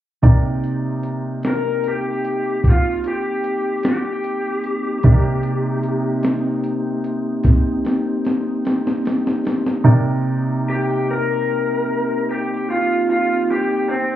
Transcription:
0.22 C3 A#3 C4 D#4 G4 A#4 D5, kick, closed hi-hat
0.64 closed hi-hat
1.03 closed hi-hat
1.43 snare, closed hi-hat
1.48 A#4
1.84 G4, closed hi-hat
2.25 closed hi-hat
2.64 kick, closed hi-hat
2.69 F4
3.04 G4, closed hi-hat
3.44 closed hi-hat
3.83 snare, closed hi-hat
3.89 G4
4.24 closed hi-hat
4.64 closed hi-hat
5.03 C3 D#4 G4 A#4 D5, kick, closed hi-hat
5.07 A#3 C4 D#4
5.43 closed hi-hat
5.83 closed hi-hat
6.23 snare, closed hi-hat
6.64 closed hi-hat
7.04 closed hi-hat
7.44 kick, snare, closed hi-hat
7.85 snare, closed hi-hat
8.25 snare, closed hi-hat
8.65 snare, closed hi-hat
8.87 snare
9.05 snare, closed hi-hat
9.27 snare
9.45 snare, closed hi-hat
9.66 snare
9.84 C3 A#3 C4 D#4 G4 A#4 D5
10.70 G4
11.11 A#4
12.31 G4
12.70 F4
13.10 F4
13.51 G4
13.89 C4

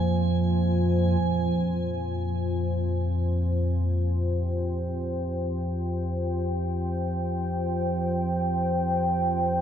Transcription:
Already playing: F2 F3 A#3 F4 C5 G#5
1.19 F2 F3
4.16 G5

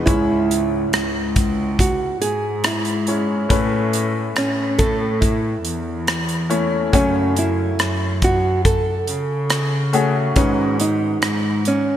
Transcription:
0.06 C#2 G#2 G#3 C#4 E4 C#5, kick, closed hi-hat
0.51 closed hi-hat
0.93 C#2, cross-stick, closed hi-hat
1.36 kick, closed hi-hat
1.79 F#4, kick, closed hi-hat
2.21 G#2 G#4, closed hi-hat
2.64 E4, cross-stick, closed hi-hat
2.85 closed hi-hat
3.07 G#3 C#4 E4 C#5, closed hi-hat
3.49 A2 A3 C#4 E4 B4, kick, closed hi-hat
3.93 closed hi-hat
4.36 A2 C#4, cross-stick, closed hi-hat
4.79 A4, kick, closed hi-hat
5.21 E4, kick, closed hi-hat
5.65 E2, closed hi-hat
6.07 cross-stick, closed hi-hat
6.29 closed hi-hat
6.50 A3 C#4 E4 C#5, closed hi-hat
6.93 F#2 C#3 A3 C#4 F#4 C#5, kick, closed hi-hat
7.36 E4, closed hi-hat
7.79 F#2, cross-stick, closed hi-hat
8.22 F#4, kick, closed hi-hat
8.65 A4, kick, closed hi-hat
9.07 C#3, closed hi-hat
9.50 cross-stick, closed hi-hat
9.93 A3 C#4 F#4 G#4, closed hi-hat
10.36 G#2 D#3 G#3 C#4 D#4 F#4 B4, kick, closed hi-hat
10.80 D#4, closed hi-hat
11.22 G#2, cross-stick, closed hi-hat
11.65 C#4, closed hi-hat

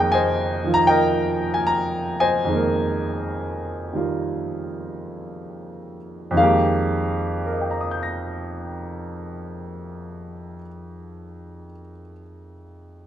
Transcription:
Already playing: F2 D#3 G#3 A#3 G#4 A#4 D#5
0.00 G5
0.12 C5 D#5 G#5
0.64 D#3 F3 F4
0.74 A#5
0.87 A#4 D#5 G5
1.54 G#5
1.67 A#5
2.20 C5 D#5 G#5
2.45 F2 D#3
2.49 G#3 A#3
2.55 A#4
3.93 D#3 G3 F4
6.31 F2 D#3
6.37 G#3 A#3 F5
6.43 G4
7.46 A#4
7.53 D#5
7.61 G5
7.71 A#5
7.81 D#6
7.91 G6
8.03 A#6

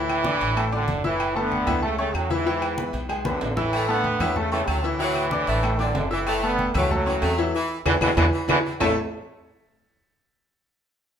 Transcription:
Already playing: D2 A2 E3 E4 E5
0.09 high conga, low agogo, claves
0.24 D4 D5 D6, high conga
0.41 A1, high conga, low agogo
0.56 A3 A4 A5, high conga, low agogo, claves
0.72 F#2 D3 D4 D5 D6, high conga, low agogo
0.88 F#1, high conga, low agogo
1.04 A2 E3 E4 E5 E6, high conga
1.20 high conga, low agogo, claves
1.36 D3 A3 B3 A4 A5, high conga
1.51 high conga, low agogo
1.67 C#2 E3 E4 E5, high conga, low conga, low agogo, claves
1.82 C#3 A3 A4 A5, high conga
1.98 C#3 A3 C#4 C#5 C#6, high conga, low agogo
2.14 E2 A2 F#3, high conga, low agogo, claves
2.30 G#2 E3 E4 E5, high conga
2.46 E3 E4 E5, high conga, low agogo
2.62 high conga, low agogo, claves
2.78 B3 B4 B5, high conga
2.93 B1, high conga, low agogo
3.09 G#3 G#4 G#5, high conga, low agogo, claves
3.25 F#2 D3 B3 B4 B5, high conga, low agogo
3.41 A1, low timbale, low agogo
3.56 A2 E3 E4 E5 E6, low conga
3.73 A3, high conga, low agogo, claves
3.88 D3 A3 B3 A4 A5, high conga
4.04 high conga, low agogo
4.20 E2 E3 F#3 E4 E5, high conga, low conga, low agogo, claves
4.36 C#3 A3 A4 A5, high conga, low conga
4.52 C#3 E3 A3 C#4 C#5 C#6, high conga, low agogo
4.68 D2 A2 F#3 A3, high conga, low agogo, claves
4.84 A2 E3 E4 E5
4.99 E3 F#3 E4 E5, high conga, low agogo
5.15 high conga, low agogo, claves
5.31 D4 D5 D6, high conga
5.47 A1 A3, high conga, low agogo
5.63 A3 A4 A5, high conga, low agogo, claves
5.79 F#2 D3 E3 D4 D5 D6, high conga, low agogo
5.95 F#1, high conga, low timbale, low agogo
6.10 A2 E3 E4 E5 E6
6.27 A3, high conga, low agogo, claves
6.43 D3 A3 B3 A4 A5, high conga
6.59 high conga, low agogo
6.74 C#2 C#3 E3 F#3 A3 E4 E5, high conga, low conga, low agogo, claves
6.91 A2 F#3 A3 A4 A5, high conga, low conga
7.06 E3 C#4 C#5 C#6, high conga, low agogo
7.22 E2 A3, high conga, low timbale, low agogo, claves
7.38 A2 E3 F#3 E4 E5
7.54 E3
7.86 E2 B2 D3 E3 E4 G#4 B4, high conga, high timbale, claves
8.01 E2 B2 D3 E3 G#3 E4 G#4 B4, high conga, high timbale, claves
8.17 E2 B2 D3 E3 E4 G#4 B4, high conga, high timbale, claves
8.33 E3
8.48 E2 B2 D3 E3 E4 G#4 B4, high conga, high timbale, claves
8.64 E3
8.80 A1 A2 A3 E4 A4 C#5 E5 A5, low conga, low timbale, claves

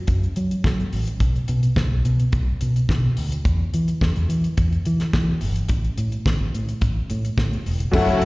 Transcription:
0.07 F#2, kick, closed hi-hat
0.23 closed hi-hat
0.36 F#3, closed hi-hat
0.51 closed hi-hat
0.64 F#3, kick, snare
0.80 closed hi-hat
0.93 A1, open hi-hat
1.08 closed hi-hat
1.20 B1, kick, closed hi-hat
1.36 closed hi-hat
1.48 B2, closed hi-hat
1.63 closed hi-hat
1.76 B1, kick, snare
1.92 B1
2.05 B2, closed hi-hat
2.20 closed hi-hat
2.32 B1, kick, closed hi-hat
2.61 B2, closed hi-hat
2.76 closed hi-hat
2.89 B2, kick, snare
3.17 D2, open hi-hat
3.32 closed hi-hat
3.45 E2, kick, closed hi-hat
3.74 E3, closed hi-hat
3.88 closed hi-hat
4.01 E2, kick, snare
4.16 E2, closed hi-hat
4.29 E3, closed hi-hat
4.44 closed hi-hat
4.57 E2, kick, closed hi-hat
4.73 closed hi-hat
4.85 E3, closed hi-hat
5.00 snare, closed hi-hat
5.13 E3, kick, snare
5.41 G1, open hi-hat
5.56 closed hi-hat
5.69 A1, kick, closed hi-hat
5.84 closed hi-hat
5.97 A2, closed hi-hat
6.12 closed hi-hat
6.26 A1, kick, snare
6.41 A1
6.54 A2, closed hi-hat
6.69 closed hi-hat
6.81 A1, kick, closed hi-hat
7.10 A2, closed hi-hat
7.25 closed hi-hat
7.38 A2, kick, snare
7.53 closed hi-hat
7.66 E1, open hi-hat
7.80 closed hi-hat
7.92 F#1 F#3 A3 C#4 E4 F#4 A4 F#5, kick, crash
8.09 closed hi-hat
8.21 F#2, closed hi-hat

